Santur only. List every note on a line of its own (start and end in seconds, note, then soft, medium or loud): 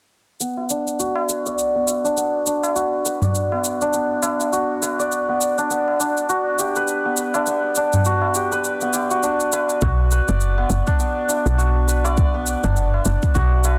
0.40 1.75 B3 medium
0.70 2.04 D4 medium
0.99 2.75 F#4 medium
1.29 3.05 B4 medium
1.46 3.22 D5 medium
1.75 2.17 B3 medium
2.04 2.46 D4 medium
2.17 3.52 B3 medium
2.46 3.81 D4 medium
2.75 4.52 F#4 medium
3.05 4.82 B4 medium
3.22 4.99 D5 medium
3.52 3.93 B3 medium
3.81 4.22 D4 medium
3.94 5.28 B3 medium
4.23 5.58 D4 medium
4.52 6.29 F#4 medium
4.82 6.76 B4 medium
4.99 7.45 D5 medium
5.29 5.70 B3 medium
5.58 5.99 D4 medium
5.70 7.05 B3 medium
6.00 7.34 D4 medium
6.29 6.65 F#4 medium
6.59 8.12 G4 medium
6.76 8.51 B4 loud
7.05 7.46 B3 medium
7.35 7.76 D4 medium
7.47 8.81 B3 medium
7.77 9.23 D4 medium
8.06 8.41 F#4 medium
8.35 8.94 G4 medium
8.52 9.52 B4 medium
8.82 10.57 B3 medium
8.94 9.17 G4 medium
9.11 9.82 F#4 medium
9.23 10.86 D4 medium
9.53 10.11 B4 medium
9.82 11.58 F#4 medium
10.12 11.87 B4 medium
10.28 12.04 D5 medium
10.58 10.99 B3 medium
10.87 11.28 D4 loud
10.99 12.34 B3 medium
11.28 12.63 D4 medium
11.58 13.34 F#4 medium
11.87 13.64 B4 medium
12.05 13.79 D5 medium
12.34 12.76 B3 medium
12.64 13.05 D4 medium
12.76 13.79 B3 medium
13.05 13.79 D4 medium
13.34 13.79 F#4 medium
13.64 13.79 B4 medium